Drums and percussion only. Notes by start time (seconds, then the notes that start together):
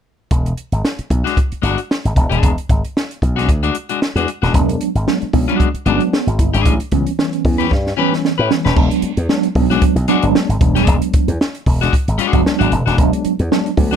0.31 kick, closed hi-hat
0.46 closed hi-hat
0.57 closed hi-hat
0.72 closed hi-hat
0.85 snare
0.99 closed hi-hat
1.10 kick, closed hi-hat
1.26 snare, closed hi-hat
1.37 kick, closed hi-hat
1.52 closed hi-hat
1.63 closed hi-hat
1.78 closed hi-hat
1.91 snare
2.05 closed hi-hat
2.16 kick, closed hi-hat
2.32 closed hi-hat
2.43 kick, closed hi-hat
2.58 closed hi-hat
2.69 kick, closed hi-hat
2.85 closed hi-hat
2.97 snare
3.11 closed hi-hat
3.22 kick, closed hi-hat
3.38 snare, closed hi-hat
3.49 kick, closed hi-hat
3.63 closed hi-hat
3.75 closed hi-hat
3.89 closed hi-hat
4.02 snare
4.17 closed hi-hat
4.28 closed hi-hat
4.43 snare, closed hi-hat
4.54 kick, closed hi-hat
4.69 closed hi-hat
4.81 closed hi-hat
4.95 closed hi-hat
5.08 snare
5.22 closed hi-hat
5.33 kick, open hi-hat
5.49 closed hi-hat
5.60 kick, closed hi-hat
5.75 closed hi-hat
5.86 closed hi-hat
6.00 closed hi-hat
6.13 snare
6.28 closed hi-hat
6.39 kick, closed hi-hat
6.54 closed hi-hat
6.65 kick, closed hi-hat
6.80 closed hi-hat
6.92 kick, closed hi-hat
7.07 closed hi-hat
7.19 snare
7.33 closed hi-hat
7.45 kick, open hi-hat
7.61 closed hi-hat
7.71 kick, snare
7.87 snare
8.13 snare
8.25 snare
8.51 snare
8.65 snare
8.76 kick, crash
8.91 closed hi-hat
9.02 closed hi-hat
9.17 closed hi-hat
9.29 snare
9.43 closed hi-hat
9.55 kick, open hi-hat
9.70 snare, closed hi-hat
9.82 kick, closed hi-hat
9.96 closed hi-hat
10.08 closed hi-hat
10.22 closed hi-hat
10.35 snare
10.50 closed hi-hat
10.61 kick, closed hi-hat
10.76 snare, closed hi-hat
10.87 kick, closed hi-hat
11.02 closed hi-hat
11.13 kick, closed hi-hat
11.28 closed hi-hat
11.41 snare
11.55 closed hi-hat
11.66 kick, open hi-hat
11.82 snare, closed hi-hat
11.93 kick, closed hi-hat
12.08 closed hi-hat
12.19 closed hi-hat
12.33 kick, closed hi-hat
12.46 snare
12.61 closed hi-hat
12.72 closed hi-hat
12.88 snare, closed hi-hat
12.98 kick, closed hi-hat
13.13 closed hi-hat
13.25 closed hi-hat
13.39 closed hi-hat
13.52 snare
13.66 closed hi-hat
13.77 kick, open hi-hat
13.92 snare